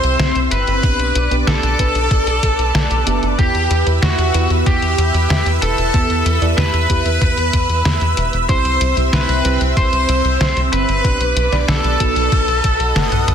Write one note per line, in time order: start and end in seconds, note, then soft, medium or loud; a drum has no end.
0.00 0.17 C2 medium
0.00 0.79 C4 medium
0.00 0.81 C4 medium
0.00 0.79 E4 medium
0.00 0.79 G4 medium
0.00 0.39 C5 loud
0.00 0.79 C5 loud
0.00 0.79 E5 medium
0.00 0.79 E6 loud
0.00 closed hi-hat soft
0.19 0.33 C2 loud
0.19 snare loud
0.19 closed hi-hat medium
0.35 0.49 C2 medium
0.35 closed hi-hat soft
0.51 0.65 G1 loud
0.51 1.34 B4 medium
0.51 1.34 B4 loud
0.51 closed hi-hat loud
0.67 0.81 G1 medium
0.67 closed hi-hat soft
0.83 0.97 B1 loud
0.83 1.27 B3 medium
0.83 1.27 D4 medium
0.83 1.27 G4 medium
0.83 8.45 B4 medium
0.83 1.27 B4 medium
0.83 3.36 D5 medium
0.83 3.36 D6 loud
0.83 kick loud
0.83 closed hi-hat medium
0.99 1.13 B1 medium
0.99 closed hi-hat soft
1.15 1.29 B1 loud
1.15 closed hi-hat medium
1.31 1.45 B1 medium
1.31 1.75 B3 medium
1.31 1.75 D4 medium
1.31 1.75 G4 medium
1.31 1.75 D5 loud
1.31 closed hi-hat soft
1.47 1.61 B1 loud
1.47 3.26 A4 medium
1.47 3.26 A4 loud
1.47 snare loud
1.47 closed hi-hat medium
1.63 1.77 B1 medium
1.63 closed hi-hat soft
1.79 1.93 B1 loud
1.79 3.04 B3 medium
1.79 3.04 D4 medium
1.79 3.03 G4 medium
1.79 3.04 B4 medium
1.79 kick medium
1.79 closed hi-hat medium
1.95 2.09 B1 medium
1.95 closed hi-hat soft
2.11 2.24 B1 loud
2.11 kick loud
2.11 closed hi-hat medium
2.27 2.40 B1 medium
2.27 closed hi-hat soft
2.43 2.56 B1 medium
2.43 kick medium
2.43 closed hi-hat medium
2.59 2.72 B1 medium
2.59 closed hi-hat soft
2.75 2.88 B1 loud
2.75 snare loud
2.75 closed hi-hat medium
2.91 3.04 B1 medium
2.91 closed hi-hat soft
3.07 3.20 F#1 loud
3.07 3.35 B3 medium
3.07 3.35 D4 medium
3.07 3.35 G4 medium
3.07 3.35 E5 medium
3.07 closed hi-hat medium
3.23 3.36 F#1 medium
3.23 closed hi-hat soft
3.39 3.52 E2 loud
3.39 3.83 B3 medium
3.39 3.83 E4 medium
3.39 3.84 G4 loud
3.39 3.83 G4 medium
3.39 3.84 G4 loud
3.39 3.83 B4 medium
3.39 8.45 E5 medium
3.39 11.01 E6 medium
3.39 kick loud
3.39 closed hi-hat medium
3.55 3.68 E2 medium
3.55 closed hi-hat soft
3.71 3.84 E2 loud
3.71 closed hi-hat medium
3.86 4.00 E2 medium
3.86 4.31 B3 medium
3.86 4.31 E4 medium
3.86 4.31 G4 medium
3.86 4.30 B4 medium
3.86 closed hi-hat soft
4.02 4.16 E2 loud
4.02 4.48 F#4 medium
4.02 snare loud
4.02 closed hi-hat medium
4.18 4.32 E2 medium
4.18 closed hi-hat soft
4.34 4.48 E2 loud
4.34 5.90 B3 medium
4.34 5.90 E4 medium
4.34 5.90 G4 medium
4.34 5.90 B4 loud
4.34 closed hi-hat medium
4.50 4.64 E2 medium
4.50 closed hi-hat soft
4.66 4.80 E2 loud
4.66 5.49 G4 loud
4.66 kick loud
4.66 closed hi-hat medium
4.82 4.96 E2 medium
4.82 closed hi-hat soft
4.98 5.12 E2 medium
4.98 closed hi-hat medium
5.14 5.28 E2 medium
5.14 closed hi-hat soft
5.30 5.44 E2 loud
5.30 snare loud
5.30 closed hi-hat medium
5.46 5.60 E2 medium
5.46 closed hi-hat soft
5.62 5.75 E1 loud
5.62 6.45 A4 loud
5.62 6.45 A4 medium
5.62 closed hi-hat medium
5.78 5.91 E1 medium
5.78 closed hi-hat soft
5.94 6.07 E2 loud
5.94 6.38 B3 medium
5.94 6.38 E4 medium
5.94 6.38 G4 medium
5.94 6.38 B4 medium
5.94 kick loud
5.94 closed hi-hat medium
6.10 6.23 E2 medium
6.10 closed hi-hat soft
6.26 6.39 E2 loud
6.26 closed hi-hat medium
6.42 6.55 E2 medium
6.42 6.86 B3 medium
6.42 6.86 E4 medium
6.42 6.86 G4 medium
6.42 6.86 D5 loud
6.42 closed hi-hat soft
6.58 6.71 E2 loud
6.58 8.36 B4 loud
6.58 snare loud
6.58 closed hi-hat medium
6.74 6.87 E2 medium
6.74 closed hi-hat soft
6.89 7.03 E2 loud
6.89 8.45 B3 medium
6.89 8.45 E4 medium
6.89 8.45 G4 medium
6.89 8.45 B4 medium
6.89 kick medium
6.89 closed hi-hat medium
7.06 7.19 E2 medium
7.06 closed hi-hat soft
7.21 7.35 E2 loud
7.21 kick loud
7.21 closed hi-hat medium
7.37 7.51 E2 medium
7.37 closed hi-hat soft
7.53 7.67 E2 loud
7.53 kick medium
7.53 closed hi-hat medium
7.69 7.83 E2 medium
7.69 closed hi-hat soft
7.85 7.99 E2 loud
7.85 snare loud
7.85 closed hi-hat medium
8.01 8.15 E2 medium
8.01 closed hi-hat soft
8.17 8.31 E1 loud
8.17 closed hi-hat medium
8.33 8.47 E1 medium
8.33 closed hi-hat soft
8.49 8.63 C2 loud
8.49 8.93 C4 medium
8.49 11.02 C4 medium
8.49 8.93 E4 medium
8.49 8.93 G4 medium
8.49 8.95 C5 loud
8.49 8.93 C5 medium
8.49 8.95 C5 loud
8.49 11.02 E5 medium
8.49 kick loud
8.49 closed hi-hat medium
8.65 8.79 C2 medium
8.65 closed hi-hat soft
8.81 8.95 C2 loud
8.81 closed hi-hat medium
8.97 9.11 C2 medium
8.97 9.41 C4 medium
8.97 9.41 E4 medium
8.97 9.41 G4 medium
8.97 9.41 C5 medium
8.97 closed hi-hat soft
9.13 9.26 C2 loud
9.13 9.59 B4 medium
9.13 snare loud
9.13 closed hi-hat medium
9.29 9.42 C2 medium
9.29 closed hi-hat soft
9.45 9.59 C2 loud
9.45 11.01 C4 medium
9.45 11.01 E4 medium
9.45 11.01 G4 medium
9.45 11.01 C5 loud
9.45 closed hi-hat medium
9.61 9.74 C2 medium
9.61 closed hi-hat soft
9.77 9.90 C2 loud
9.77 10.60 C5 loud
9.77 kick loud
9.77 closed hi-hat medium
9.93 10.06 C2 medium
9.93 closed hi-hat soft
10.09 10.22 C2 loud
10.09 closed hi-hat medium
10.25 10.38 C2 medium
10.25 closed hi-hat soft
10.41 10.54 C2 loud
10.41 snare loud
10.41 closed hi-hat medium
10.57 10.70 C2 medium
10.57 closed hi-hat soft
10.72 10.86 G1 loud
10.72 11.56 B4 loud
10.72 11.56 B4 medium
10.72 closed hi-hat medium
10.89 11.02 G1 medium
10.89 closed hi-hat soft
11.04 11.18 B1 loud
11.04 11.49 B3 medium
11.04 11.49 D4 medium
11.04 11.49 G4 medium
11.04 11.49 B4 medium
11.04 13.35 B4 medium
11.04 12.31 D5 medium
11.04 12.31 D6 medium
11.04 kick loud
11.04 closed hi-hat medium
11.21 11.34 B1 medium
11.21 closed hi-hat soft
11.36 11.50 B1 loud
11.36 closed hi-hat medium
11.52 11.66 B1 medium
11.52 11.96 B3 medium
11.52 11.96 D4 medium
11.52 11.96 G4 medium
11.52 11.96 D5 loud
11.52 snare soft
11.52 closed hi-hat soft
11.68 11.82 B1 loud
11.68 13.35 A4 loud
11.68 snare loud
11.68 closed hi-hat medium
11.84 11.98 B1 medium
11.84 closed hi-hat soft
12.00 12.14 B1 medium
12.00 13.35 B3 medium
12.00 13.35 D#4 medium
12.00 13.35 F#4 medium
12.00 13.35 B4 medium
12.00 kick medium
12.00 closed hi-hat loud
12.16 12.30 B1 medium
12.16 closed hi-hat soft
12.32 12.46 B1 loud
12.32 13.35 D#5 medium
12.32 13.35 F#5 medium
12.32 13.35 D#6 medium
12.32 kick loud
12.32 closed hi-hat medium
12.48 12.62 B1 medium
12.48 closed hi-hat soft
12.64 12.78 B1 medium
12.64 kick medium
12.64 closed hi-hat loud
12.80 12.93 B1 medium
12.80 closed hi-hat soft
12.96 13.09 F#1 loud
12.96 snare loud
12.96 closed hi-hat medium
13.12 13.25 B1 medium
13.12 closed hi-hat soft
13.12 high tom medium
13.28 13.35 B1 loud
13.28 closed hi-hat loud
13.28 mid tom medium